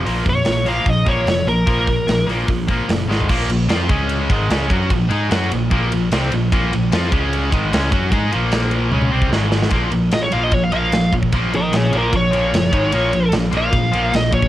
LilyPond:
<<
  \new Staff \with { instrumentName = "Lead electric guitar" } { \time 4/4 \key bes \minor \tempo 4 = 150 r8 des''4 f''8 ees''8 des''4 bes'8~ | bes'4. r2 r8 | r1 | r1 |
r1 | r1 | r4 ees''16 des''16 f''16 ees''16 des''16 f''16 f''4 r8 | r8 <bes' ees''>8 <aes' des''>8 <f' bes'>8 des''2~ |
des''4 r8 f''4. ees''8 des''8 | }
  \new Staff \with { instrumentName = "Distorted electric guitar" } { \clef bass \time 4/4 \key bes \minor <bes, f bes>8 <bes, f>8 <bes, f>8 <bes, f bes>8 <bes, f>8 <bes, f bes>8 <bes, f>8 <bes, f>8 | <bes, f bes>8 <bes, f>8 <bes, f>8 <bes, f bes>8 <bes, f>8 <bes, f bes>8 <bes, f>8 <aes, ees aes>8 | <bes, f bes>8 <bes, f>8 <f c' f'>8 <des aes des'>4 <aes, ees aes>8 <des aes des'>8 <ges des' ges'>8 | <bes, f>8 <aes ees' aes'>8 <ges des' ges'>8 <bes, f>8 <bes, f bes>8 <bes, f>8 <c g c'>8 <bes, f>8 |
<bes, f bes>8 <bes, f>8 <f c' f'>8 <des aes des'>4 <aes, ees aes>8 <des aes des'>8 <ges des' ges'>8 | <aes ees' aes'>8 <bes, f bes>4. <des aes des'>8 <c g c'>8 <aes, ees aes>4 | <bes, f bes>8 <bes, f>8 <bes, f>8 <bes, f bes>8 <bes, f>8 <bes, f bes>8 <bes, f>8 <bes, f>8 | <bes, f bes>8 <bes, f>8 <bes, f>8 <bes, f bes>8 <bes, f>8 <bes, f bes>8 <bes, f>8 <aes, ees aes>8 |
<bes, f bes>8 <bes, f>8 <bes, f>8 <bes, f bes>8 <bes, f>8 <bes, f bes>8 <bes, f>8 <bes, f>8 | }
  \new Staff \with { instrumentName = "Overdriven electric guitar" } { \clef bass \time 4/4 \key bes \minor <bes, f bes>8 <bes, f>8 <bes, f>8 <bes, f bes>8 <bes, f>8 <bes, f bes>8 <bes, f>8 <bes, f>8 | <bes, f bes>8 <bes, f>8 <bes, f>8 <bes, f bes>8 <bes, f>8 <bes, f bes>8 <bes, f>8 <aes, ees aes>8 | <bes, f bes>8 <bes, f>8 <f c' f'>8 <des aes des'>4 <aes, ees aes>8 <des aes des'>8 <ges des' ges'>8 | <bes, f>8 <aes ees' aes'>8 <ges des' ges'>8 <bes, f>8 <bes, f bes>8 <bes, f>8 <c g c'>8 <bes, f>8 |
<bes, f bes>8 <bes, f>8 <f c' f'>8 <des aes des'>4 <aes, ees aes>8 <des aes des'>8 <ges des' ges'>8 | <aes ees' aes'>8 <bes, f bes>4. <des aes des'>8 <c g c'>8 <aes, ees aes>4 | <bes, f bes>8 <bes, f>8 <bes, f>8 <bes, f bes>8 <bes, f>8 <bes, f bes>8 <bes, f>8 <bes, f>8 | <bes, f bes>8 <bes, f>8 <bes, f>8 <bes, f bes>8 <bes, f>8 <bes, f bes>8 <bes, f>8 <aes, ees aes>8 |
<bes, f bes>8 <bes, f>8 <bes, f>8 <bes, f bes>8 <bes, f>8 <bes, f bes>8 <bes, f>8 <bes, f>8 | }
  \new Staff \with { instrumentName = "Picked electric bass" } { \clef bass \time 4/4 \key bes \minor bes,,8 f,8 bes,,4 bes,,8 bes,,8 f,,8 bes,,8 | bes,,4 bes,,8 bes,,8 bes,,4 ges,,8 aes,,8 | bes,,8 bes,,8 f,8 des,4 aes,,8 des,8 ges,8 | bes,,8 aes,8 ges,8 bes,,8 bes,,8 bes,,8 c,8 bes,,8 |
bes,,8 bes,,8 f,8 des,4 aes,,8 des,8 ges,8 | aes,8 bes,,4. des,8 c,8 aes,,4 | bes,,8 bes,,8 bes,,8 bes,,8 bes,,8 bes,,8 bes,,8 bes,,8 | bes,,8 bes,,8 bes,,8 bes,,8 bes,,4 ges,,8 aes,,8 |
bes,,8 bes,,8 bes,,8 bes,,8 bes,,8 bes,,8 bes,,8 bes,,8 | }
  \new DrumStaff \with { instrumentName = "Drums" } \drummode { \time 4/4 hho8 <hho bd>8 <hho sn>8 hho8 <hho bd>8 <hho bd>8 <hho sn>8 hho8 | <hho bd>8 <hho bd>8 <hho sn>8 hho8 <hho bd>8 <hho bd>8 <hho sn>8 sn16 tomfh16 | <cymc bd>8 cymr8 <cymr sn>8 <bd cymr>8 cymr8 <bd cymr>8 <cymr sn>8 <bd cymr>8 | <bd cymr>8 cymr8 <cymr sn>8 cymr8 <bd cymr>8 cymr8 <cymr sn>8 cymr8 |
<bd cymr>8 cymr8 <cymr sn>8 <bd cymr>8 cymr8 <bd cymr>8 <cymr sn>8 <bd cymr>8 | <bd cymr>8 cymr8 <cymr sn>8 cymr8 tommh16 tommh8 bd16 sn8 sn16 sn16 | <bd cymr>8 cymr8 <cymr sn>8 cymr8 <bd cymr>8 cymr8 <cymr sn>8 <bd cymr>16 bd16 | <bd cymr>8 cymr8 <cymr sn>8 cymr8 <bd cymr>8 cymr8 <cymr sn>8 <bd cymr>8 |
cymr8 cymr8 <cymr sn>8 cymr8 <bd cymr>8 cymr8 <cymr sn>8 <bd cymr>16 bd16 | }
>>